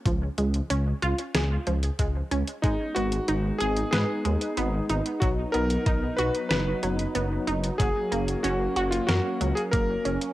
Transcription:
<<
  \new Staff \with { instrumentName = "Electric grand piano" } { \time 4/4 \key gis \dorian \tempo 4 = 93 r1 | dis'8 fis'4 gis'8 gis'4. r8 | fis'8 ais'4 b'8 b'4. r8 | gis'4 fis'8. eis'16 fis'8. gis'16 ais'8. r16 | }
  \new Staff \with { instrumentName = "Synth arpeggio sound" } { \time 4/4 \key gis \dorian eis8 gis8 cis'8 eis'8 gis'8 eis8 gis8 cis'8 | gis8 b8 dis'8 gis'8 b'8 gis8 b8 dis'8 | fis8 b8 dis'8 fis'8 b'8 fis8 b8 dis'8 | fis8 ais8 cis'8 fis'8 ais'8 fis8 ais8 cis'8 | }
  \new Staff \with { instrumentName = "Analog synth pad" } { \time 4/4 \key gis \dorian << { r1 | <b dis'>1~ | <b dis'>1 | <ais cis'>1 | } \\ { r1 | gis1 | fis1~ | fis1 | } >> }
  \new Staff \with { instrumentName = "Detuned saw bass" } { \clef bass \time 4/4 \key gis \dorian cis,8 cis,8 cis,8 cis,8 cis,8 cis,8 cis,8 cis,8 | gis,,8 gis,,8 gis,,8 gis,,8 gis,8 dis,8 gis,,8 gis,,8 | b,,8 b,,8 b,,8 b,,8 fis,,8 fis,,8 fis,,8 fis,,8 | fis,,8 fis,,8 fis,,8 fis,,8 fis,8 cis,8 fis,,8 fis,,8 | }
  \new DrumStaff \with { instrumentName = "Drums" } \drummode { \time 4/4 <hh bd>8 hh16 hh16 hh8 hh16 hh16 <hh sn>8 hh16 hh16 <hh bd>8 hh16 hh16 | <hh bd>8 hh16 hh16 hh8 hh16 hh16 <hh sn>8 hh16 hh16 hh8 hh16 hh16 | <hh bd>8 hh16 hh16 <hh bd>8 hh16 hh16 <hh sn>8 hh16 hh16 hh8 hh16 hh16 | <hh bd>8 hh16 hh16 hh8 hh16 hh16 <hh sn>8 hh16 hh16 <hh bd>8 hh16 hh16 | }
>>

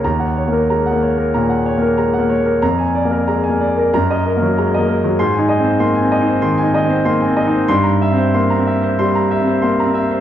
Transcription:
<<
  \new Staff \with { instrumentName = "Grand piano" } { \time 4/4 \key ees \dorian \tempo 4 = 94 << { bes''8 r2. r8 | bes''8 r4. bes''8 r4. | \key c \phrygian c'''8 r2. r8 | c'''8 r2. r8 | } \\ { r16 ges''16 des''16 bes'16 bes''16 ges''16 des''16 bes'16 bes''16 ges''16 des''16 bes'16 bes''16 ges''16 des''16 bes'16 | r16 aes''16 d''16 bes'16 bes''16 aes''16 d''16 bes'16 r16 ees''16 bes'16 ges16 bes''16 ees''16 bes'16 ges16 | r16 aes''16 ees''16 c''16 c'''16 aes''16 ees''16 c''16 c'''16 aes''16 ees''16 c''16 c'''16 aes''16 ees''16 c''16 | r16 bes''16 e''16 c''16 c'''16 bes''16 e''16 c''16 c'''16 bes''16 e''16 c''16 c'''16 bes''16 e''16 c''16 | } >> }
  \new Staff \with { instrumentName = "Grand piano" } { \time 4/4 \key ees \dorian \tuplet 3/2 { ees,4 bes8 aes8 bes4 bes,4 bes8 aes8 bes4 } | \tuplet 3/2 { f,4 bes8 aes8 bes4 ges,4 bes8 aes8 bes4 } | \key c \phrygian \tuplet 3/2 { aes,8 ees'8 c'8 bes8 c'8 ees'8 ees8 ees'8 c'8 bes8 c'8 ees'8 } | \tuplet 3/2 { g,4 c'8 bes8 c'4 g4 c'8 bes8 c'4 } | }
>>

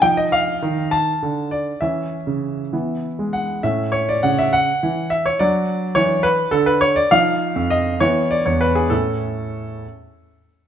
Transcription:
<<
  \new Staff \with { instrumentName = "Grand piano" } { \time 6/8 \key a \major \tempo 4. = 68 << { g''16 ees''16 f''4 a''4 d''8 | e''2~ e''8 fis''8 | e''8 cis''16 d''16 fis''16 e''16 fis''4 e''16 cis''16 | d''4 cis''8 b'8 a'16 b'16 cis''16 d''16 |
eis''4 dis''8 cis''8 d''16 cis''16 b'16 gis'16 | a'4. r4. | } \\ { ees'2. | cis'4. b4. | cis'2. | d'2. |
dis'4. b4. | r2. | } >> }
  \new Staff \with { instrumentName = "Grand piano" } { \clef bass \time 6/8 \key a \major f4 ees4 d4 | e8. cis8. e8. gis8. | a,4 cis4 e4 | fis4 e4 d4 |
eis8. eis,8. e8. e,8. | <a, cis' e'>4. r4. | }
>>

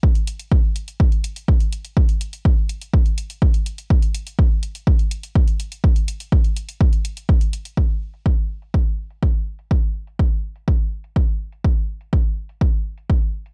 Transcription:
\new DrumStaff \with { instrumentName = "Drums" } \drummode { \time 4/4 \tempo 4 = 124 bd16 hh16 hh16 hh16 bd8 hh16 hh16 bd16 hh16 hh16 hh16 bd16 hh16 hh16 hh16 | bd16 hh16 hh16 hh16 bd8 hh16 hh16 bd16 hh16 hh16 hh16 bd16 hh16 hh16 hh16 | bd16 hh16 hh16 hh16 bd8 hh16 hh16 bd16 hh16 hh16 hh16 bd16 hh16 hh16 hh16 | bd16 hh16 hh16 hh16 bd16 hh16 hh16 hh16 bd16 hh16 hh16 hh16 bd16 hh16 hh16 hh16 |
bd16 hh8 hh16 bd8. hh16 bd8. hh16 bd16 hh8 hh16 | bd16 hh8 hh16 bd8. hh16 bd8. hh16 bd16 hh8 hh16 | bd16 hh8 hh16 bd8. hh16 bd8. hh16 bd16 hh8 hh16 | }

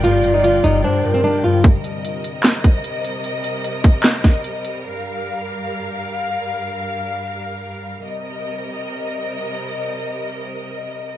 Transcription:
<<
  \new Staff \with { instrumentName = "Soft synth lead" } { \time 4/4 \key c \minor \tempo 4 = 150 d''2 c''8 bes'4. | r1 | r1 | r1 |
r1 | r1 | r1 | }
  \new Staff \with { instrumentName = "String section" } { \time 4/4 \key c \minor << { <f' g''>1 | <c ees''>1~ | <c ees''>1 | <g, f''>1~ |
<g, f''>1 | <c g bes' ees''>1~ | <c g bes' ees''>1 | } \\ { <bes' d''>1 | <g bes'>1~ | <g bes'>1~ | <g bes'>1~ |
<g bes'>1 | r1 | r1 | } >> }
  \new Staff \with { instrumentName = "Nylon-string guitar" } { \time 4/4 \key c \minor f'8. ees'16 f'8 ees'8 d'8. c'16 d'8 f'8 | r1 | r1 | r1 |
r1 | r1 | r1 | }
  \new Staff \with { instrumentName = "Harp" } { \clef bass \time 4/4 \key c \minor <g, g>8 g,8 d8 g,8 g,8 g,8 g8 g,8 | r1 | r1 | r1 |
r1 | r1 | r1 | }
  \new Staff \with { instrumentName = "808-style bass" } { \clef bass \time 4/4 \key c \minor g,,4. g,,8 r2 | r1 | r1 | r1 |
r1 | r1 | r1 | }
  \new DrumStaff \with { instrumentName = "Drums" } \drummode { \time 4/4 hh8 hh8 hh8 hh8 r4 r4 | <hh bd>8 hh8 hh8 hh8 <hc hh sn>8 <hh bd>8 hh8 hh8 | hh8 hh8 hh8 <hh bd>8 <hc hh sn>8 <hh bd sn>8 hh8 hh8 | r4 r4 r4 r4 |
r4 r4 r4 r4 | r4 r4 r4 r4 | r4 r4 r4 r4 | }
>>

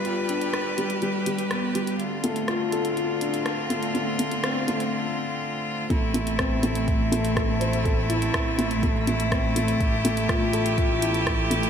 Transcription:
<<
  \new Staff \with { instrumentName = "String quartet" } { \time 4/4 \key a \minor \tempo 4 = 123 << { <g' b'>1 | <c' f'>1~ | <c' f'>1 | <c' e'>1~ |
<c' e'>1 | g'1 | } \\ { g1 | d1~ | d1 | a1~ |
a1~ | a1 | } >> }
  \new Staff \with { instrumentName = "Felt piano" } { \time 4/4 \key a \minor f'8 d'8 r8 g8 g8 g8 b8 g8 | r8 a8 f'8 a'8 f'8 d'8 r8 a8 | a8 a8 c'8 a8 r2 | a8 a8 c'8 a8 r8 a8 a'8 c''8 |
a'8 e'8 r8 a8 a8 a8 c'8 a8 | r8 a8 f'8 a'8 f'8 e'8 r8 a8 | }
  \new Staff \with { instrumentName = "Double bass section" } { \clef bass \time 4/4 \key a \minor g,,1 | d,1~ | d,2 r2 | a,,1~ |
a,,1 | a,,1 | }
  \new DrumStaff \with { instrumentName = "Drums" } \drummode { \time 4/4 hh8 hh16 hh16 <hh ss>8 hh16 hh16 hh8 hh16 hh16 <hh ss>8 hh16 hh16 | hh8 hh16 hh16 <hh ss>8 hh16 hh16 hh8 hh16 hh16 <hh ss>8 hh16 hh16 | hh8 hh16 hh16 <hh ss>8 hh16 hh16 r4 r4 | <hh bd>8 hh16 hh16 <hh bd ss>8 hh16 hh16 <hh bd>8 hh16 hh16 <hh bd ss>8 hh16 hh16 |
<hh bd>8 hh16 hh16 <hh bd ss>8 hh16 hh16 <hh bd>8 hh16 hh16 <hh bd ss>8 hh16 hh16 | <hh bd>8 hh16 hh16 <hh bd ss>8 hh16 hh16 <hh bd>8 hh16 hh16 <hh bd ss>8 hh16 hh16 | }
>>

